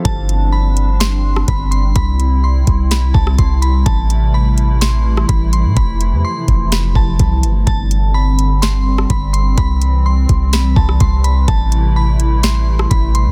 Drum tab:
HH |x-x---x-x---x-x-|x-x---x-x---x-x-|x-x---x-x---x-x-|x-x---x-x---x-x-|
SD |--------o--r----|--------o--r----|--------o--r----|--------o-------|
BD |o-----------o---|o-----o---o-o---|o-----------o---|o-----o---o-o---|

HH |x-x---x-x---x-x-|x-x---x-x---x-x-|x-x---x-x---x-x-|
SD |--------o--r----|--------o--r----|--------o--r----|
BD |o-----------o---|o-----o---o-o---|o-----------o---|